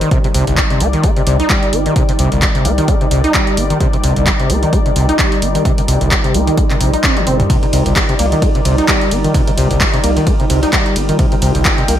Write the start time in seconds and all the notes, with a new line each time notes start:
Already playing: G3 D#4 F4 A#4 G5
0.01 D#3, closed hi-hat
0.11 C3 D5, kick, closed hi-hat
0.24 C3, closed hi-hat
0.34 C2 C3, open hi-hat
0.47 G1 C2, closed hi-hat
0.57 G3, kick, clap, closed hi-hat
0.70 C3, closed hi-hat
0.80 C2 C4, open hi-hat
0.93 D#3, closed hi-hat
1.04 A#3, kick, closed hi-hat
1.17 C3, closed hi-hat
1.27 C2 C3, open hi-hat
1.40 D#4, closed hi-hat
1.50 G3, kick, clap, closed hi-hat
1.63 closed hi-hat
1.73 G1 C4, open hi-hat
1.86 D#3, closed hi-hat
1.96 C3, kick, closed hi-hat
2.09 C3, open hi-hat
2.19 C2 C3, open hi-hat
2.32 G1 C2, closed hi-hat
2.42 G3, kick, clap, closed hi-hat
2.55 C3, closed hi-hat
2.65 C2 C4, open hi-hat
2.78 D#3, closed hi-hat
2.88 A#3, kick, closed hi-hat
3.01 C3, closed hi-hat
3.11 C2 C3, open hi-hat
3.24 D#4, closed hi-hat
3.34 G3, kick, clap, closed hi-hat
3.47 closed hi-hat
3.57 G1 C4, open hi-hat
3.70 D#3, closed hi-hat
3.80 C3, kick, closed hi-hat
3.93 C3, closed hi-hat
4.04 C2 C3, open hi-hat
4.16 G1 C2, closed hi-hat
4.27 G3, kick, clap, closed hi-hat
4.40 C3, closed hi-hat
4.50 C2 C4, open hi-hat
4.63 D#3, closed hi-hat
4.73 A#3, kick, closed hi-hat
4.86 C3, closed hi-hat
4.96 C2 C3, open hi-hat
5.09 D#4, closed hi-hat
5.19 G3, kick, clap, closed hi-hat
5.32 closed hi-hat
5.42 G1 C4, open hi-hat
5.55 D#3, closed hi-hat
5.65 C3, kick, closed hi-hat
5.78 C3, open hi-hat
5.88 C2 C3, open hi-hat
6.01 G1 C2, closed hi-hat
6.11 G3, kick, clap, closed hi-hat
6.24 C3, closed hi-hat
6.34 C2 C4, open hi-hat
6.47 D#3, closed hi-hat
6.57 A#3, kick, closed hi-hat
6.70 C3, clap, closed hi-hat
6.81 A#1 C3, open hi-hat
6.94 D#4, closed hi-hat
7.04 C4, kick, clap, closed hi-hat
7.17 D3, closed hi-hat, high tom
7.27 G1 C4, open hi-hat, mid tom
7.40 C2, closed hi-hat, mid tom
7.50 C3 D5, kick, closed hi-hat, ride
7.63 C3, closed hi-hat, ride
7.73 C2 C3, open hi-hat, ride
7.86 G1 C2, closed hi-hat
7.96 G3, kick, snare, clap, closed hi-hat, ride
8.09 C3, closed hi-hat
8.19 C2 A#3, snare, open hi-hat, ride
8.32 D#3, closed hi-hat
8.42 A#3, kick, closed hi-hat, ride
8.55 C3, closed hi-hat, ride
8.65 C2 C3, open hi-hat, ride
8.78 D#4, closed hi-hat
8.88 G3, kick, snare, clap, closed hi-hat, ride
9.01 closed hi-hat
9.11 G1 C4, open hi-hat, ride
9.24 D#3, closed hi-hat
9.34 C3, kick, closed hi-hat, ride
9.47 C3, open hi-hat
9.57 C2 C3, open hi-hat, ride
9.70 G1 C2, closed hi-hat
9.81 G3, kick, snare, clap, closed hi-hat, ride
9.94 C3, closed hi-hat
10.04 C2 A#3, open hi-hat, ride
10.17 D#3, closed hi-hat, ride
10.27 A#3, kick, closed hi-hat, ride
10.40 C3, closed hi-hat
10.50 C2 C3, open hi-hat, ride
10.63 D#4, snare, closed hi-hat
10.73 G3, kick, snare, clap, closed hi-hat, ride
10.86 closed hi-hat, ride
10.96 G1 C4, open hi-hat, ride
11.09 D#3, closed hi-hat
11.19 C3 G5, kick, closed hi-hat, ride
11.32 C3, closed hi-hat, ride
11.42 C2 C3, open hi-hat, ride
11.55 G1 C2, closed hi-hat
11.65 G3, kick, snare, clap, closed hi-hat, ride
11.78 C3, closed hi-hat
11.88 C2 A#3, snare, open hi-hat, ride